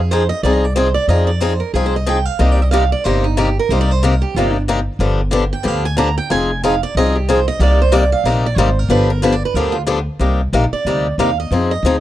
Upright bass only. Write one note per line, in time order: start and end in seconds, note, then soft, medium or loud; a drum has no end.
0.00 0.31 F2 medium
0.43 0.96 C2 medium
1.08 1.60 F2 medium
1.73 2.26 C2 medium
2.39 2.91 C2 medium
3.05 3.57 G1 medium
3.69 4.21 C2 medium
4.35 4.87 G1 medium
4.99 5.51 G1 medium
5.65 6.17 D2 medium
6.30 6.82 F1 medium
6.95 7.47 C2 medium
7.60 8.12 C2 medium
8.24 8.52 A#1 medium
8.56 8.85 G#1 medium
8.89 9.41 G1 medium
9.54 10.07 D2 medium
10.20 10.52 C2 medium
10.53 10.71 A#1 medium
10.72 muted upright bass stroke soft
10.85 11.17 D2 medium
11.18 11.50 D#2 medium
11.51 11.82 F2 medium
11.83 12.00 D2 medium